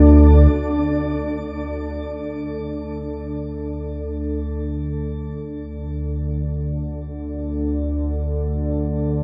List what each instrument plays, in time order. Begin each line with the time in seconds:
Already playing: synth drone D2 D3, synth texture D4 D5, ambient pad D4 A4 D5
0.53 synth drone D2 D3